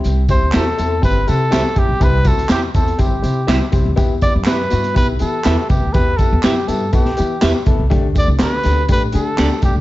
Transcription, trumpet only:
X:1
M:4/4
L:1/8
Q:1/4=122
K:Clyd
V:1 name="Trumpet"
z c A2 B A2 G | B A G A G3 z | z d B2 B A2 G | B A G A G3 z |
z d B2 B A2 G |]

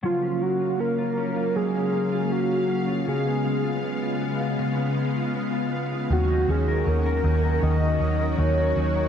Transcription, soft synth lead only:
X:1
M:4/4
L:1/8
Q:1/4=79
K:F#
V:1 name="Soft synth lead"
E F A2 G2 F2 | G3 z4 z | F G A2 d2 c2 |]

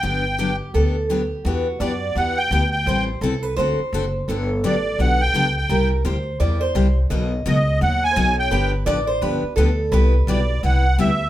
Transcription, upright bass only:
X:1
M:4/4
L:1/8
Q:"Swing" 1/4=170
K:G
V:1 name="Upright bass" clef=bass
G,,,4 D,,4 | E,,2 F,,2 E,,2 D,,2 | A,,,2 C,,2 D,, z F,,,2 | G,,,2 A,,,2 B,,,2 ^C,,2 |
C,,2 D,,2 E,,2 C,,2 | B,,,2 ^C,,2 ^D,,2 B,,,2 | G,,,2 A,,,2 G,,, z D,,2 | C,,2 B,,,2 C,,2 D,,2 |]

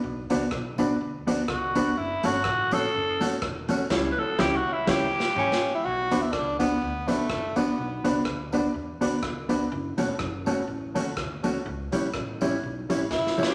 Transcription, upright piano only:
X:1
M:4/4
L:1/8
Q:"Swing" 1/4=124
K:Bm
V:1 name="Upright piano"
z [DFBd] [Bd] [DFBd] z [DFBd] z [DFBd] | z [CFAc] [Ac] [CFAc] z [CFAc] [Ac] [CFAc] | [CEGc] z [CEGc] z [CEGc] z3 | z [DFBd] [Bd] [DFBd] z [DFBd] z [DFBd] |
z [DFBd] [Bd] [DFBd] z [DFBd] z [DFBd] | z [CFAc] [Ac] [CFAc] z [CFAc] z [CFAc] | z [CEGc] [Gc] [CEGc] z [CEGc] z [CEGc] |]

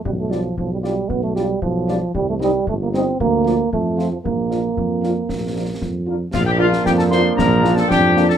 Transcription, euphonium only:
X:1
M:2/4
L:1/16
Q:1/4=115
K:Bb
V:1 name="Euphonium"
G, A, F,2 F, G, G,2 | =B, A, G,2 F,4 | G, A, G,2 A, B, C2 | B,4 A,3 F, |
B,8- | B,6 z2 | B,8- | B,4 D4 |]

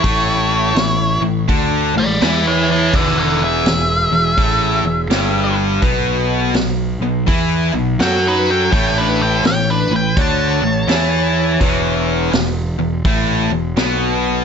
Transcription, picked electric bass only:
X:1
M:4/4
L:1/8
Q:"Swing" 1/4=83
K:A
V:1 name="Picked electric bass" clef=bass
A,,,2 A,,, A,,, D,, A,,, E,,2 | E,,,2 E,,, E,,, A,,, E,,, =G,,,2 | B,,,2 B,,, B,,, E,, B,,, F,,2 | A,,,2 A,,, A,,, D,, A,,, E,,2 |
E,,,2 E,,, E,,, A,,, E,,, B,,,2 |]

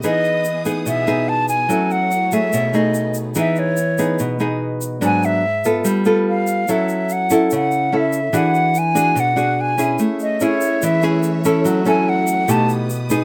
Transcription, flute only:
X:1
M:4/4
L:1/8
Q:1/4=145
K:E
V:1 name="Flute"
d3 z e2 a g- | g f2 e2 d2 z | e c3 z4 | g e3 z2 =f2 |
e2 f2 f2 e2 | f2 g2 f2 g2 | z d c2 e z3 | z g f2 a z3 |]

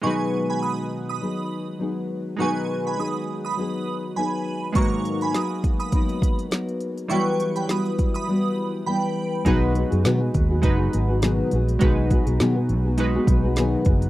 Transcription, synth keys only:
X:1
M:4/4
L:1/8
Q:"Swing 16ths" 1/4=102
K:B
V:1 name="Synth keys"
[G,DFB]8 | [G,DFB]8 | [G,A,B,F]8 | [F,=G,EB]8 |
[G,DFB]3 z [G,DFB]3 z | [G,DFB]3 z [G,DFB]3 z |]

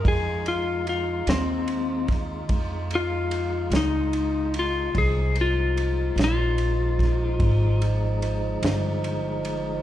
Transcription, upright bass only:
X:1
M:12/8
L:1/8
Q:3/8=49
K:Fm
V:1 name="Upright bass" clef=bass
F,,3 E,,3 F,,3 D,,3 | C,,3 B,,,3 A,,,3 G,,,3 |]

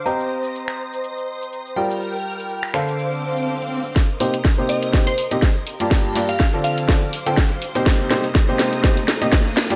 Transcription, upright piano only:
X:1
M:4/4
L:1/16
Q:"Swing 16ths" 1/4=123
K:Cdor
V:1 name="Upright piano"
[CGceb]12- [CGceb]2 [G,FBdg]2- | [G,FBdg]6 [D,DAcf]8- [D,DAcf]2 | z2 [C,B,EGc] z2 [C,B,EGc]3 [C,B,EGc] z2 [C,B,EGe] z3 [G,,B,FGd]- | [G,,B,FGd]2 [G,,B,FGd] z2 [D,CFAd]3 [D,CFAd] z2 [D,CFAg] z3 [C,B,EGc]- |
[C,B,EGc]2 [C,B,EGc] z2 [C,B,EGc]3 [C,B,EGc] z2 [C,B,EGe] z3 [G,,B,FGd] |]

